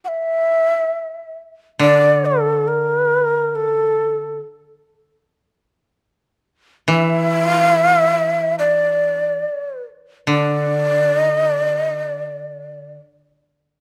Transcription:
0.05 1.34 E5 loud
0.05 0.09 F#5 medium
1.79 4.38 D3 medium
1.79 2.27 D5 loud
2.25 2.69 A4 medium
2.68 3.57 A#4 medium
3.55 4.39 A4 medium
6.88 9.42 E3 medium
6.88 7.50 E5 loud
7.50 7.63 F5 loud
7.63 7.83 E5 loud
7.83 7.96 F5 loud
7.96 8.55 E5 loud
8.59 9.82 D5 loud
10.27 12.95 D3 medium
10.27 11.22 D5 loud
11.22 11.48 D#5 loud
11.48 11.75 D5 loud
11.75 12.00 D#5 loud
12.00 12.92 D5 loud

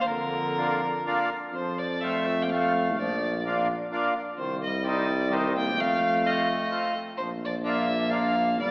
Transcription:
0.01 0.10 D#3 medium
0.01 0.08 C5 medium
0.06 1.03 F2 medium
0.06 1.31 D3 medium
0.06 1.30 A#4 medium
0.57 0.80 A#3 medium
0.57 0.81 D4 medium
0.57 0.81 F4 medium
1.05 1.29 A#3 medium
1.05 1.30 D4 medium
1.05 1.30 F4 medium
1.53 3.00 F2 loud
1.53 1.81 F3 medium
1.53 1.80 C5 medium
1.78 2.06 F3 medium
1.78 2.03 D5 medium
2.01 2.25 A3 medium
2.01 2.26 C4 medium
2.01 2.26 F4 medium
2.01 2.44 E5 medium
2.05 2.46 A3 medium
2.42 2.55 A#3 medium
2.42 2.51 G5 medium
2.50 2.73 A3 medium
2.50 2.99 A3 medium
2.50 2.74 C4 medium
2.50 2.74 F4 medium
2.50 2.97 F5 medium
2.98 3.89 A#1 loud
2.98 3.43 F3 medium
2.98 3.42 D5 medium
3.45 3.67 A#3 medium
3.45 3.68 D4 medium
3.45 3.68 F4 medium
3.91 4.13 A#3 medium
3.91 4.14 D4 medium
3.91 4.14 F4 medium
4.38 5.78 C2 loud
4.38 4.61 D#3 medium
4.38 4.61 C5 medium
4.64 4.85 G3 medium
4.64 4.86 D#5 medium
4.83 5.06 G3 medium
4.83 5.32 G3 medium
4.83 5.07 C4 medium
4.83 5.08 D#4 medium
4.83 5.35 D5 medium
5.29 5.55 D#3 medium
5.29 5.52 G3 medium
5.29 5.52 C4 medium
5.29 5.53 D#4 medium
5.33 5.57 C5 medium
5.56 5.80 A#3 medium
5.56 5.82 G5 loud
5.76 6.69 F2 medium
5.76 6.26 A3 loud
5.80 6.28 F5 loud
6.22 6.46 A3 medium
6.22 6.98 A3 medium
6.22 6.47 C4 medium
6.22 6.47 F4 medium
6.22 6.98 D#5 medium
6.70 6.94 A3 medium
6.70 6.94 C4 medium
6.70 6.94 F4 medium
7.17 8.62 A#1 loud
7.17 7.31 F3 medium
7.17 7.29 C5 medium
7.45 7.55 F3 soft
7.45 7.55 D5 medium
7.63 7.88 A#3 medium
7.63 7.88 D4 medium
7.63 7.89 F4 medium
7.63 8.12 E5 medium
7.68 8.16 A#3 medium
8.10 8.34 A#3 medium
8.10 8.34 D4 soft
8.10 8.35 F4 medium
8.10 8.58 F5 medium
8.16 8.60 A#3 medium
8.60 8.71 G1 loud
8.60 8.71 G3 medium
8.60 8.71 D5 medium

